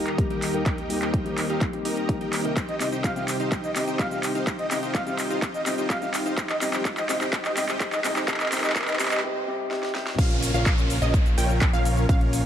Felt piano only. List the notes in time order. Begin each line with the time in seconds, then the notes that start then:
Already playing: G3 A#3 D#4 G4
0.18 G3 A#3 D#4 G4
0.53 G3 A#3 D#4 A#4
0.89 G3 A#3 D#4 G4
1.25 G3 A#3 D#4 G4
1.72 G3 A#3 D#4 G4
2.08 G3 A#3 D#4 G4
2.44 C3 G3 A#3 D#4 A#4
2.80 C3 G3 C4 D#4 G4
3.15 C3 G3 C4 D#4 G4
3.75 C3 G3 C4 D#4 G4
4.11 C3 G3 C4 D#4 G4
4.70 C3 G3 C4 D#4 G4
5.06 C3 G3 C4 D#4 G4
5.65 C3 G3 C4 D#4 G4
6.01 C3 G3 C4 D#4 G4
6.61 C3 G3 C4 D#4 G4
7.08 C3 G3 C4 D#4 G4
7.56 C3 G3 C4 D#4 G4
8.04 C3 G3 C4 D#4 G4
8.27 C3 G3 C4 G4
8.51 C3 G3 C4 D#4 G4
8.75 C3 G3 D#4 G4
8.99 C3 G3 C4 D#4 G4
9.23 C3 G3 C4 D#4 G4
9.47 C3 G3 C4 D#4 G4
9.70 C3 G3 C4 D#4 G4
9.94 C3 G3 C4 D#4 G4